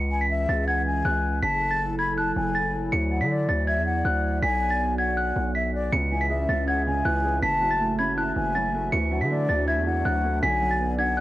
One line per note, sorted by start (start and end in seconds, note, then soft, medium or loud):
0.00 0.46 C#2 loud
0.00 1.41 E3 medium
0.00 1.41 C#4 medium
0.00 1.41 G#4 loud
0.00 0.19 C#7 loud
0.11 0.29 G#5 medium
0.21 0.28 B6 medium
0.30 0.65 E5 medium
0.49 1.03 C#2 loud
0.49 0.63 A6 medium
0.67 0.85 F#5 medium
0.67 1.03 G#6 medium
0.86 1.39 G#5 medium
1.05 1.41 C#2 loud
1.05 1.40 F#6 medium
1.42 2.32 F#1 loud
1.42 4.39 F#3 medium
1.42 4.39 E4 medium
1.42 2.91 A4 medium
1.42 1.95 A5 loud
1.42 1.69 B6 loud
1.71 1.78 A6 medium
1.99 2.16 B5 medium
1.99 2.13 G#6 medium
2.17 2.35 A5 medium
2.17 2.53 F#6 medium
2.36 2.90 F#1 loud
2.36 2.89 G#5 medium
2.55 2.69 A6 medium
2.92 3.22 D2 loud
2.92 5.89 D5 medium
2.92 3.19 C#7 loud
3.11 3.29 F#5 medium
3.21 3.47 D3 loud
3.21 3.28 B6 medium
3.30 3.65 D5 medium
3.49 3.78 D2 loud
3.49 3.63 A6 medium
3.67 3.85 E5 medium
3.67 4.03 G#6 medium
3.77 4.04 E2 loud
3.86 4.39 F#5 medium
4.05 4.41 D2 loud
4.05 4.40 F#6 medium
4.42 5.32 B1 loud
4.42 5.91 B3 medium
4.42 5.91 F#4 medium
4.42 4.95 G#5 loud
4.42 4.69 B6 loud
4.71 4.78 A6 medium
4.99 5.52 F#5 medium
4.99 5.13 G#6 medium
5.17 5.53 F#6 medium
5.36 5.90 B1 loud
5.55 5.73 E5 medium
5.55 5.69 B6 medium
5.74 5.92 D5 loud
5.92 6.46 C#2 loud
5.92 6.85 C#3 medium
5.92 7.41 C#4 medium
5.92 7.41 G#4 medium
5.92 7.41 E5 medium
5.92 6.19 C#7 loud
6.11 7.04 E3 medium
6.11 6.29 G#5 medium
6.21 6.28 B6 medium
6.30 7.23 G#3 medium
6.30 6.65 E5 medium
6.49 7.03 C#2 loud
6.49 7.43 C#4 loud
6.49 6.63 A6 medium
6.67 7.43 C#5 medium
6.67 6.85 F#5 medium
6.67 7.03 G#6 medium
6.86 7.43 C#3 medium
6.86 7.39 G#5 medium
7.05 7.41 C#2 loud
7.05 7.41 E3 loud
7.05 7.40 F#6 medium
7.24 7.43 G#3 medium
7.42 8.32 F#1 loud
7.42 8.35 E3 medium
7.42 8.91 A3 medium
7.42 11.20 F#4 medium
7.42 10.39 E5 loud
7.42 7.95 A5 loud
7.42 7.69 B6 loud
7.61 8.54 F#3 medium
7.71 7.78 A6 medium
7.80 8.72 A3 medium
7.99 8.93 C#4 loud
7.99 8.16 B5 medium
7.99 8.13 G#6 medium
8.17 8.92 E4 medium
8.17 8.35 A5 medium
8.17 8.53 F#6 medium
8.36 8.90 F#1 loud
8.36 8.91 E3 medium
8.36 8.89 G#5 medium
8.55 8.92 F#3 medium
8.55 8.69 A6 medium
8.74 8.93 A3 medium
8.92 9.22 D2 loud
8.92 9.85 E3 medium
8.92 10.41 D4 medium
8.92 9.19 C#7 loud
9.11 10.04 F#3 medium
9.11 9.29 F#5 medium
9.21 9.47 D3 loud
9.21 9.28 B6 medium
9.30 10.22 A3 medium
9.30 9.65 D5 medium
9.49 9.78 D2 loud
9.49 10.43 D4 loud
9.49 9.63 A6 medium
9.67 10.43 E4 medium
9.67 9.85 E5 medium
9.67 10.03 G#6 medium
9.77 10.04 E2 loud
9.86 10.43 E3 medium
9.86 10.39 F#5 medium
10.05 10.41 D2 loud
10.05 10.42 F#3 medium
10.05 10.40 F#6 medium
10.24 10.43 A3 medium
10.42 11.20 B1 loud
10.42 11.20 D3 medium
10.42 11.20 B3 medium
10.42 11.20 D5 loud
10.42 10.95 G#5 loud
10.42 10.69 B6 loud
10.61 11.20 F#3 medium
10.71 10.78 A6 medium
10.79 11.20 B3 medium
10.98 11.20 D4 medium
10.98 11.20 F#5 medium
10.98 11.13 G#6 medium
11.17 11.20 F#6 medium